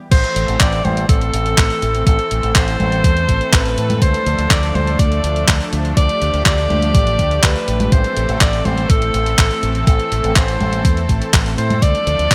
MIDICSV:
0, 0, Header, 1, 5, 480
1, 0, Start_track
1, 0, Key_signature, 0, "minor"
1, 0, Tempo, 487805
1, 114, Time_signature, 4, 2, 24, 8
1, 12151, End_track
2, 0, Start_track
2, 0, Title_t, "Alto saxophone"
2, 0, Program_c, 0, 65
2, 113, Note_on_c, 0, 72, 113
2, 592, Note_on_c, 0, 74, 104
2, 607, Note_off_c, 0, 72, 0
2, 835, Note_on_c, 0, 72, 99
2, 850, Note_off_c, 0, 74, 0
2, 1068, Note_off_c, 0, 72, 0
2, 1074, Note_on_c, 0, 69, 106
2, 1995, Note_off_c, 0, 69, 0
2, 2032, Note_on_c, 0, 69, 101
2, 2512, Note_on_c, 0, 72, 108
2, 2527, Note_off_c, 0, 69, 0
2, 3471, Note_on_c, 0, 71, 99
2, 3486, Note_off_c, 0, 72, 0
2, 3950, Note_on_c, 0, 72, 107
2, 3965, Note_off_c, 0, 71, 0
2, 4432, Note_on_c, 0, 74, 104
2, 4447, Note_off_c, 0, 72, 0
2, 4674, Note_on_c, 0, 72, 92
2, 4689, Note_off_c, 0, 74, 0
2, 4914, Note_on_c, 0, 74, 100
2, 4929, Note_off_c, 0, 72, 0
2, 5609, Note_off_c, 0, 74, 0
2, 5873, Note_on_c, 0, 74, 120
2, 6320, Note_off_c, 0, 74, 0
2, 6354, Note_on_c, 0, 74, 113
2, 7315, Note_on_c, 0, 71, 103
2, 7329, Note_off_c, 0, 74, 0
2, 7796, Note_on_c, 0, 72, 107
2, 7811, Note_off_c, 0, 71, 0
2, 8269, Note_off_c, 0, 72, 0
2, 8275, Note_on_c, 0, 74, 99
2, 8514, Note_on_c, 0, 72, 96
2, 8529, Note_off_c, 0, 74, 0
2, 8757, Note_on_c, 0, 69, 104
2, 8771, Note_off_c, 0, 72, 0
2, 9707, Note_off_c, 0, 69, 0
2, 9713, Note_on_c, 0, 69, 99
2, 10191, Note_on_c, 0, 72, 94
2, 10206, Note_off_c, 0, 69, 0
2, 11127, Note_off_c, 0, 72, 0
2, 11394, Note_on_c, 0, 72, 104
2, 11632, Note_on_c, 0, 74, 127
2, 11647, Note_off_c, 0, 72, 0
2, 12151, Note_off_c, 0, 74, 0
2, 12151, End_track
3, 0, Start_track
3, 0, Title_t, "Analog synth pad"
3, 0, Program_c, 1, 89
3, 114, Note_on_c, 1, 52, 78
3, 114, Note_on_c, 1, 60, 70
3, 114, Note_on_c, 1, 69, 90
3, 115, Note_on_c, 1, 57, 69
3, 3916, Note_off_c, 1, 52, 0
3, 3916, Note_off_c, 1, 60, 0
3, 3953, Note_on_c, 1, 62, 74
3, 3954, Note_on_c, 1, 53, 78
3, 5835, Note_off_c, 1, 69, 0
3, 5875, Note_on_c, 1, 67, 88
3, 7755, Note_off_c, 1, 62, 0
3, 7756, Note_off_c, 1, 53, 0
3, 7776, Note_off_c, 1, 67, 0
3, 7794, Note_on_c, 1, 52, 78
3, 7794, Note_on_c, 1, 60, 72
3, 7795, Note_on_c, 1, 69, 88
3, 11595, Note_off_c, 1, 57, 0
3, 11596, Note_off_c, 1, 52, 0
3, 11596, Note_off_c, 1, 60, 0
3, 11635, Note_on_c, 1, 57, 75
3, 11636, Note_on_c, 1, 53, 79
3, 11637, Note_on_c, 1, 62, 70
3, 12151, Note_off_c, 1, 53, 0
3, 12151, Note_off_c, 1, 57, 0
3, 12151, Note_off_c, 1, 62, 0
3, 12151, Note_off_c, 1, 69, 0
3, 12151, End_track
4, 0, Start_track
4, 0, Title_t, "Fingered electric bass"
4, 0, Program_c, 2, 33
4, 114, Note_on_c, 2, 33, 100
4, 215, Note_off_c, 2, 33, 0
4, 354, Note_on_c, 2, 33, 93
4, 456, Note_off_c, 2, 33, 0
4, 476, Note_on_c, 2, 33, 105
4, 577, Note_off_c, 2, 33, 0
4, 593, Note_on_c, 2, 33, 91
4, 797, Note_off_c, 2, 33, 0
4, 835, Note_on_c, 2, 33, 104
4, 1038, Note_off_c, 2, 33, 0
4, 1074, Note_on_c, 2, 33, 76
4, 1277, Note_off_c, 2, 33, 0
4, 1316, Note_on_c, 2, 33, 87
4, 1518, Note_off_c, 2, 33, 0
4, 1554, Note_on_c, 2, 33, 81
4, 1655, Note_off_c, 2, 33, 0
4, 1796, Note_on_c, 2, 33, 82
4, 1998, Note_off_c, 2, 33, 0
4, 2033, Note_on_c, 2, 33, 98
4, 2135, Note_off_c, 2, 33, 0
4, 2277, Note_on_c, 2, 33, 80
4, 2377, Note_off_c, 2, 33, 0
4, 2397, Note_on_c, 2, 33, 89
4, 2497, Note_off_c, 2, 33, 0
4, 2513, Note_on_c, 2, 33, 96
4, 2717, Note_off_c, 2, 33, 0
4, 2756, Note_on_c, 2, 33, 99
4, 2958, Note_off_c, 2, 33, 0
4, 2994, Note_on_c, 2, 40, 85
4, 3197, Note_off_c, 2, 40, 0
4, 3234, Note_on_c, 2, 33, 89
4, 3336, Note_off_c, 2, 33, 0
4, 3473, Note_on_c, 2, 33, 102
4, 3677, Note_off_c, 2, 33, 0
4, 3715, Note_on_c, 2, 45, 96
4, 3917, Note_off_c, 2, 45, 0
4, 3953, Note_on_c, 2, 38, 99
4, 4055, Note_off_c, 2, 38, 0
4, 4195, Note_on_c, 2, 38, 95
4, 4296, Note_off_c, 2, 38, 0
4, 4314, Note_on_c, 2, 38, 101
4, 4416, Note_off_c, 2, 38, 0
4, 4433, Note_on_c, 2, 38, 92
4, 4637, Note_off_c, 2, 38, 0
4, 4674, Note_on_c, 2, 38, 107
4, 4877, Note_off_c, 2, 38, 0
4, 4913, Note_on_c, 2, 38, 82
4, 5117, Note_off_c, 2, 38, 0
4, 5155, Note_on_c, 2, 38, 90
4, 5358, Note_off_c, 2, 38, 0
4, 5393, Note_on_c, 2, 38, 81
4, 5495, Note_off_c, 2, 38, 0
4, 5635, Note_on_c, 2, 38, 84
4, 5838, Note_off_c, 2, 38, 0
4, 5873, Note_on_c, 2, 38, 100
4, 5975, Note_off_c, 2, 38, 0
4, 6117, Note_on_c, 2, 38, 82
4, 6217, Note_off_c, 2, 38, 0
4, 6237, Note_on_c, 2, 38, 89
4, 6337, Note_off_c, 2, 38, 0
4, 6354, Note_on_c, 2, 38, 92
4, 6557, Note_off_c, 2, 38, 0
4, 6597, Note_on_c, 2, 38, 99
4, 6799, Note_off_c, 2, 38, 0
4, 6835, Note_on_c, 2, 33, 84
4, 7038, Note_off_c, 2, 33, 0
4, 7075, Note_on_c, 2, 38, 83
4, 7278, Note_off_c, 2, 38, 0
4, 7315, Note_on_c, 2, 38, 93
4, 7416, Note_off_c, 2, 38, 0
4, 7557, Note_on_c, 2, 33, 88
4, 7758, Note_off_c, 2, 33, 0
4, 7795, Note_on_c, 2, 33, 102
4, 7896, Note_off_c, 2, 33, 0
4, 8037, Note_on_c, 2, 33, 94
4, 8137, Note_off_c, 2, 33, 0
4, 8159, Note_on_c, 2, 33, 102
4, 8258, Note_off_c, 2, 33, 0
4, 8274, Note_on_c, 2, 33, 91
4, 8477, Note_off_c, 2, 33, 0
4, 8516, Note_on_c, 2, 33, 103
4, 8718, Note_off_c, 2, 33, 0
4, 8755, Note_on_c, 2, 33, 78
4, 8958, Note_off_c, 2, 33, 0
4, 8996, Note_on_c, 2, 33, 89
4, 9198, Note_off_c, 2, 33, 0
4, 9234, Note_on_c, 2, 33, 81
4, 9336, Note_off_c, 2, 33, 0
4, 9474, Note_on_c, 2, 33, 81
4, 9677, Note_off_c, 2, 33, 0
4, 9714, Note_on_c, 2, 33, 100
4, 9816, Note_off_c, 2, 33, 0
4, 9957, Note_on_c, 2, 33, 80
4, 10057, Note_off_c, 2, 33, 0
4, 10077, Note_on_c, 2, 33, 90
4, 10177, Note_off_c, 2, 33, 0
4, 10194, Note_on_c, 2, 33, 92
4, 10397, Note_off_c, 2, 33, 0
4, 10435, Note_on_c, 2, 33, 100
4, 10637, Note_off_c, 2, 33, 0
4, 10675, Note_on_c, 2, 40, 84
4, 10877, Note_off_c, 2, 40, 0
4, 10914, Note_on_c, 2, 33, 89
4, 11016, Note_off_c, 2, 33, 0
4, 11154, Note_on_c, 2, 33, 101
4, 11357, Note_off_c, 2, 33, 0
4, 11395, Note_on_c, 2, 45, 94
4, 11598, Note_off_c, 2, 45, 0
4, 11633, Note_on_c, 2, 38, 100
4, 11735, Note_off_c, 2, 38, 0
4, 11875, Note_on_c, 2, 38, 98
4, 11976, Note_off_c, 2, 38, 0
4, 11994, Note_on_c, 2, 38, 100
4, 12096, Note_off_c, 2, 38, 0
4, 12115, Note_on_c, 2, 38, 91
4, 12151, Note_off_c, 2, 38, 0
4, 12151, End_track
5, 0, Start_track
5, 0, Title_t, "Drums"
5, 114, Note_on_c, 9, 36, 122
5, 114, Note_on_c, 9, 42, 100
5, 114, Note_on_c, 9, 49, 104
5, 212, Note_off_c, 9, 36, 0
5, 213, Note_off_c, 9, 42, 0
5, 213, Note_off_c, 9, 49, 0
5, 235, Note_on_c, 9, 42, 41
5, 333, Note_off_c, 9, 42, 0
5, 355, Note_on_c, 9, 42, 68
5, 454, Note_off_c, 9, 42, 0
5, 475, Note_on_c, 9, 42, 41
5, 574, Note_off_c, 9, 42, 0
5, 594, Note_on_c, 9, 36, 118
5, 594, Note_on_c, 9, 39, 119
5, 594, Note_on_c, 9, 42, 100
5, 692, Note_off_c, 9, 36, 0
5, 692, Note_off_c, 9, 39, 0
5, 692, Note_off_c, 9, 42, 0
5, 714, Note_on_c, 9, 42, 41
5, 812, Note_off_c, 9, 42, 0
5, 835, Note_on_c, 9, 42, 38
5, 835, Note_on_c, 9, 63, 76
5, 933, Note_off_c, 9, 42, 0
5, 933, Note_off_c, 9, 63, 0
5, 955, Note_on_c, 9, 42, 40
5, 1054, Note_off_c, 9, 42, 0
5, 1073, Note_on_c, 9, 36, 117
5, 1073, Note_on_c, 9, 42, 100
5, 1172, Note_off_c, 9, 36, 0
5, 1172, Note_off_c, 9, 42, 0
5, 1195, Note_on_c, 9, 42, 41
5, 1294, Note_off_c, 9, 42, 0
5, 1314, Note_on_c, 9, 42, 73
5, 1413, Note_off_c, 9, 42, 0
5, 1435, Note_on_c, 9, 42, 40
5, 1533, Note_off_c, 9, 42, 0
5, 1554, Note_on_c, 9, 36, 119
5, 1554, Note_on_c, 9, 39, 118
5, 1554, Note_on_c, 9, 42, 95
5, 1652, Note_off_c, 9, 36, 0
5, 1653, Note_off_c, 9, 39, 0
5, 1653, Note_off_c, 9, 42, 0
5, 1675, Note_on_c, 9, 42, 41
5, 1774, Note_off_c, 9, 42, 0
5, 1794, Note_on_c, 9, 42, 68
5, 1892, Note_off_c, 9, 42, 0
5, 1915, Note_on_c, 9, 42, 40
5, 2013, Note_off_c, 9, 42, 0
5, 2033, Note_on_c, 9, 36, 127
5, 2035, Note_on_c, 9, 42, 95
5, 2132, Note_off_c, 9, 36, 0
5, 2133, Note_off_c, 9, 42, 0
5, 2153, Note_on_c, 9, 42, 40
5, 2252, Note_off_c, 9, 42, 0
5, 2274, Note_on_c, 9, 42, 67
5, 2372, Note_off_c, 9, 42, 0
5, 2394, Note_on_c, 9, 42, 42
5, 2493, Note_off_c, 9, 42, 0
5, 2514, Note_on_c, 9, 36, 124
5, 2514, Note_on_c, 9, 39, 127
5, 2514, Note_on_c, 9, 42, 94
5, 2612, Note_off_c, 9, 36, 0
5, 2612, Note_off_c, 9, 39, 0
5, 2612, Note_off_c, 9, 42, 0
5, 2635, Note_on_c, 9, 42, 40
5, 2734, Note_off_c, 9, 42, 0
5, 2755, Note_on_c, 9, 42, 35
5, 2755, Note_on_c, 9, 63, 74
5, 2853, Note_off_c, 9, 42, 0
5, 2853, Note_off_c, 9, 63, 0
5, 2876, Note_on_c, 9, 42, 39
5, 2974, Note_off_c, 9, 42, 0
5, 2994, Note_on_c, 9, 36, 120
5, 2995, Note_on_c, 9, 42, 95
5, 3092, Note_off_c, 9, 36, 0
5, 3093, Note_off_c, 9, 42, 0
5, 3116, Note_on_c, 9, 42, 41
5, 3215, Note_off_c, 9, 42, 0
5, 3234, Note_on_c, 9, 36, 62
5, 3235, Note_on_c, 9, 42, 69
5, 3332, Note_off_c, 9, 36, 0
5, 3334, Note_off_c, 9, 42, 0
5, 3355, Note_on_c, 9, 42, 41
5, 3454, Note_off_c, 9, 42, 0
5, 3473, Note_on_c, 9, 36, 127
5, 3476, Note_on_c, 9, 39, 126
5, 3476, Note_on_c, 9, 42, 92
5, 3572, Note_off_c, 9, 36, 0
5, 3574, Note_off_c, 9, 39, 0
5, 3574, Note_off_c, 9, 42, 0
5, 3597, Note_on_c, 9, 42, 42
5, 3695, Note_off_c, 9, 42, 0
5, 3716, Note_on_c, 9, 42, 67
5, 3815, Note_off_c, 9, 42, 0
5, 3837, Note_on_c, 9, 42, 41
5, 3837, Note_on_c, 9, 63, 75
5, 3935, Note_off_c, 9, 42, 0
5, 3935, Note_off_c, 9, 63, 0
5, 3953, Note_on_c, 9, 36, 127
5, 3956, Note_on_c, 9, 42, 92
5, 4052, Note_off_c, 9, 36, 0
5, 4055, Note_off_c, 9, 42, 0
5, 4076, Note_on_c, 9, 42, 39
5, 4175, Note_off_c, 9, 42, 0
5, 4196, Note_on_c, 9, 42, 64
5, 4295, Note_off_c, 9, 42, 0
5, 4315, Note_on_c, 9, 42, 40
5, 4414, Note_off_c, 9, 42, 0
5, 4433, Note_on_c, 9, 36, 125
5, 4436, Note_on_c, 9, 39, 126
5, 4436, Note_on_c, 9, 42, 90
5, 4532, Note_off_c, 9, 36, 0
5, 4534, Note_off_c, 9, 39, 0
5, 4534, Note_off_c, 9, 42, 0
5, 4556, Note_on_c, 9, 42, 38
5, 4654, Note_off_c, 9, 42, 0
5, 4676, Note_on_c, 9, 42, 35
5, 4676, Note_on_c, 9, 63, 74
5, 4775, Note_off_c, 9, 42, 0
5, 4775, Note_off_c, 9, 63, 0
5, 4796, Note_on_c, 9, 42, 37
5, 4894, Note_off_c, 9, 42, 0
5, 4913, Note_on_c, 9, 36, 126
5, 4915, Note_on_c, 9, 42, 93
5, 5011, Note_off_c, 9, 36, 0
5, 5014, Note_off_c, 9, 42, 0
5, 5036, Note_on_c, 9, 42, 40
5, 5134, Note_off_c, 9, 42, 0
5, 5155, Note_on_c, 9, 42, 65
5, 5254, Note_off_c, 9, 42, 0
5, 5275, Note_on_c, 9, 42, 39
5, 5374, Note_off_c, 9, 42, 0
5, 5394, Note_on_c, 9, 36, 127
5, 5394, Note_on_c, 9, 39, 127
5, 5394, Note_on_c, 9, 42, 92
5, 5492, Note_off_c, 9, 36, 0
5, 5493, Note_off_c, 9, 39, 0
5, 5493, Note_off_c, 9, 42, 0
5, 5515, Note_on_c, 9, 42, 39
5, 5613, Note_off_c, 9, 42, 0
5, 5635, Note_on_c, 9, 42, 67
5, 5733, Note_off_c, 9, 42, 0
5, 5756, Note_on_c, 9, 42, 37
5, 5854, Note_off_c, 9, 42, 0
5, 5874, Note_on_c, 9, 36, 127
5, 5875, Note_on_c, 9, 42, 88
5, 5972, Note_off_c, 9, 36, 0
5, 5974, Note_off_c, 9, 42, 0
5, 5995, Note_on_c, 9, 42, 39
5, 6094, Note_off_c, 9, 42, 0
5, 6116, Note_on_c, 9, 42, 61
5, 6215, Note_off_c, 9, 42, 0
5, 6236, Note_on_c, 9, 42, 37
5, 6334, Note_off_c, 9, 42, 0
5, 6354, Note_on_c, 9, 36, 123
5, 6355, Note_on_c, 9, 39, 127
5, 6355, Note_on_c, 9, 42, 91
5, 6453, Note_off_c, 9, 36, 0
5, 6453, Note_off_c, 9, 39, 0
5, 6453, Note_off_c, 9, 42, 0
5, 6475, Note_on_c, 9, 42, 37
5, 6573, Note_off_c, 9, 42, 0
5, 6596, Note_on_c, 9, 42, 35
5, 6596, Note_on_c, 9, 63, 76
5, 6694, Note_off_c, 9, 42, 0
5, 6694, Note_off_c, 9, 63, 0
5, 6715, Note_on_c, 9, 42, 39
5, 6814, Note_off_c, 9, 42, 0
5, 6835, Note_on_c, 9, 36, 120
5, 6835, Note_on_c, 9, 42, 91
5, 6933, Note_off_c, 9, 36, 0
5, 6934, Note_off_c, 9, 42, 0
5, 6955, Note_on_c, 9, 42, 38
5, 7054, Note_off_c, 9, 42, 0
5, 7075, Note_on_c, 9, 36, 61
5, 7075, Note_on_c, 9, 42, 63
5, 7173, Note_off_c, 9, 36, 0
5, 7173, Note_off_c, 9, 42, 0
5, 7195, Note_on_c, 9, 42, 37
5, 7294, Note_off_c, 9, 42, 0
5, 7314, Note_on_c, 9, 39, 122
5, 7314, Note_on_c, 9, 42, 87
5, 7315, Note_on_c, 9, 36, 127
5, 7413, Note_off_c, 9, 36, 0
5, 7413, Note_off_c, 9, 39, 0
5, 7413, Note_off_c, 9, 42, 0
5, 7436, Note_on_c, 9, 42, 37
5, 7535, Note_off_c, 9, 42, 0
5, 7555, Note_on_c, 9, 42, 65
5, 7654, Note_off_c, 9, 42, 0
5, 7675, Note_on_c, 9, 42, 38
5, 7675, Note_on_c, 9, 63, 76
5, 7774, Note_off_c, 9, 42, 0
5, 7774, Note_off_c, 9, 63, 0
5, 7795, Note_on_c, 9, 36, 122
5, 7795, Note_on_c, 9, 42, 87
5, 7893, Note_off_c, 9, 36, 0
5, 7893, Note_off_c, 9, 42, 0
5, 7915, Note_on_c, 9, 42, 38
5, 8013, Note_off_c, 9, 42, 0
5, 8035, Note_on_c, 9, 42, 61
5, 8133, Note_off_c, 9, 42, 0
5, 8156, Note_on_c, 9, 42, 40
5, 8254, Note_off_c, 9, 42, 0
5, 8275, Note_on_c, 9, 36, 122
5, 8275, Note_on_c, 9, 39, 125
5, 8275, Note_on_c, 9, 42, 94
5, 8373, Note_off_c, 9, 36, 0
5, 8374, Note_off_c, 9, 39, 0
5, 8374, Note_off_c, 9, 42, 0
5, 8395, Note_on_c, 9, 42, 39
5, 8493, Note_off_c, 9, 42, 0
5, 8514, Note_on_c, 9, 42, 35
5, 8514, Note_on_c, 9, 63, 78
5, 8613, Note_off_c, 9, 42, 0
5, 8613, Note_off_c, 9, 63, 0
5, 8635, Note_on_c, 9, 42, 37
5, 8734, Note_off_c, 9, 42, 0
5, 8754, Note_on_c, 9, 42, 93
5, 8755, Note_on_c, 9, 36, 117
5, 8853, Note_off_c, 9, 36, 0
5, 8853, Note_off_c, 9, 42, 0
5, 8875, Note_on_c, 9, 42, 39
5, 8973, Note_off_c, 9, 42, 0
5, 8995, Note_on_c, 9, 42, 63
5, 9093, Note_off_c, 9, 42, 0
5, 9115, Note_on_c, 9, 42, 37
5, 9214, Note_off_c, 9, 42, 0
5, 9234, Note_on_c, 9, 36, 121
5, 9236, Note_on_c, 9, 39, 120
5, 9236, Note_on_c, 9, 42, 92
5, 9333, Note_off_c, 9, 36, 0
5, 9334, Note_off_c, 9, 39, 0
5, 9334, Note_off_c, 9, 42, 0
5, 9355, Note_on_c, 9, 42, 38
5, 9454, Note_off_c, 9, 42, 0
5, 9475, Note_on_c, 9, 42, 65
5, 9574, Note_off_c, 9, 42, 0
5, 9594, Note_on_c, 9, 42, 38
5, 9693, Note_off_c, 9, 42, 0
5, 9714, Note_on_c, 9, 36, 117
5, 9715, Note_on_c, 9, 42, 92
5, 9812, Note_off_c, 9, 36, 0
5, 9813, Note_off_c, 9, 42, 0
5, 9836, Note_on_c, 9, 42, 38
5, 9934, Note_off_c, 9, 42, 0
5, 9956, Note_on_c, 9, 42, 66
5, 10055, Note_off_c, 9, 42, 0
5, 10077, Note_on_c, 9, 42, 40
5, 10175, Note_off_c, 9, 42, 0
5, 10194, Note_on_c, 9, 36, 113
5, 10195, Note_on_c, 9, 39, 113
5, 10195, Note_on_c, 9, 42, 97
5, 10292, Note_off_c, 9, 36, 0
5, 10294, Note_off_c, 9, 39, 0
5, 10294, Note_off_c, 9, 42, 0
5, 10315, Note_on_c, 9, 42, 41
5, 10414, Note_off_c, 9, 42, 0
5, 10435, Note_on_c, 9, 42, 37
5, 10435, Note_on_c, 9, 63, 83
5, 10534, Note_off_c, 9, 42, 0
5, 10534, Note_off_c, 9, 63, 0
5, 10555, Note_on_c, 9, 42, 39
5, 10653, Note_off_c, 9, 42, 0
5, 10674, Note_on_c, 9, 36, 111
5, 10675, Note_on_c, 9, 42, 94
5, 10772, Note_off_c, 9, 36, 0
5, 10773, Note_off_c, 9, 42, 0
5, 10796, Note_on_c, 9, 42, 39
5, 10894, Note_off_c, 9, 42, 0
5, 10914, Note_on_c, 9, 36, 56
5, 10916, Note_on_c, 9, 42, 66
5, 11012, Note_off_c, 9, 36, 0
5, 11015, Note_off_c, 9, 42, 0
5, 11037, Note_on_c, 9, 42, 39
5, 11135, Note_off_c, 9, 42, 0
5, 11154, Note_on_c, 9, 36, 121
5, 11157, Note_on_c, 9, 39, 117
5, 11157, Note_on_c, 9, 42, 94
5, 11253, Note_off_c, 9, 36, 0
5, 11255, Note_off_c, 9, 39, 0
5, 11255, Note_off_c, 9, 42, 0
5, 11277, Note_on_c, 9, 42, 41
5, 11376, Note_off_c, 9, 42, 0
5, 11396, Note_on_c, 9, 42, 64
5, 11495, Note_off_c, 9, 42, 0
5, 11517, Note_on_c, 9, 42, 41
5, 11517, Note_on_c, 9, 63, 84
5, 11615, Note_off_c, 9, 42, 0
5, 11615, Note_off_c, 9, 63, 0
5, 11634, Note_on_c, 9, 36, 117
5, 11636, Note_on_c, 9, 42, 95
5, 11732, Note_off_c, 9, 36, 0
5, 11735, Note_off_c, 9, 42, 0
5, 11757, Note_on_c, 9, 42, 42
5, 11855, Note_off_c, 9, 42, 0
5, 11877, Note_on_c, 9, 42, 68
5, 11975, Note_off_c, 9, 42, 0
5, 11997, Note_on_c, 9, 42, 44
5, 12096, Note_off_c, 9, 42, 0
5, 12114, Note_on_c, 9, 36, 116
5, 12118, Note_on_c, 9, 39, 112
5, 12118, Note_on_c, 9, 42, 98
5, 12151, Note_off_c, 9, 36, 0
5, 12151, Note_off_c, 9, 39, 0
5, 12151, Note_off_c, 9, 42, 0
5, 12151, End_track
0, 0, End_of_file